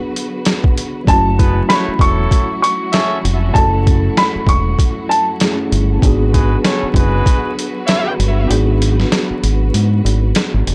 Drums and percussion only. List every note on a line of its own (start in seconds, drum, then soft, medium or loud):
0.16 closed hi-hat medium
0.45 snare loud
0.45 closed hi-hat loud
0.64 kick loud
0.78 closed hi-hat medium
1.07 kick loud
1.07 closed hi-hat loud
1.39 kick medium
1.39 closed hi-hat medium
1.70 snare loud
1.70 closed hi-hat medium
1.99 kick loud
1.99 closed hi-hat medium
2.31 kick loud
2.31 closed hi-hat loud
2.64 closed hi-hat medium
2.93 snare loud
2.93 closed hi-hat loud
3.25 closed hi-hat medium
3.55 kick loud
3.55 closed hi-hat medium
3.87 kick medium
3.87 closed hi-hat medium
4.17 snare loud
4.17 closed hi-hat medium
4.47 kick loud
4.47 closed hi-hat medium
4.79 kick loud
4.79 closed hi-hat loud
5.11 closed hi-hat medium
5.40 snare loud
5.40 closed hi-hat loud
5.72 closed hi-hat medium
6.02 kick loud
6.02 closed hi-hat loud
6.34 kick medium
6.34 closed hi-hat medium
6.65 snare loud
6.65 closed hi-hat medium
6.94 kick loud
6.94 closed hi-hat medium
7.26 kick loud
7.26 closed hi-hat loud
7.59 closed hi-hat medium
7.88 snare loud
7.88 closed hi-hat loud
8.20 closed hi-hat medium
8.51 closed hi-hat loud
8.82 closed hi-hat medium
9.00 snare soft
9.12 snare loud
9.12 closed hi-hat medium
9.44 closed hi-hat medium
9.74 closed hi-hat loud
10.06 closed hi-hat medium
10.35 snare loud
10.35 closed hi-hat loud
10.67 closed hi-hat medium